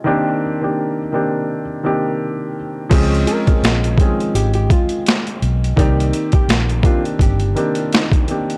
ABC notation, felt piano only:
X:1
M:4/4
L:1/16
Q:"Swing 16ths" 1/4=84
K:Cm
V:1 name="Felt piano"
[E,B,CDG]2 z [E,B,CDG]2 z [E,B,CDG]3 z [E,B,CDG]4 z2 | [F,A,C_DA]2 z [F,A,CDA]2 z [E,F,A,CDA]4- [E,F,A,CDA] z4 z | [E,B,CGd]4 z2 [E,B,CDG]3 z [E,B,CDG]3 z [E,B,CDG] z |]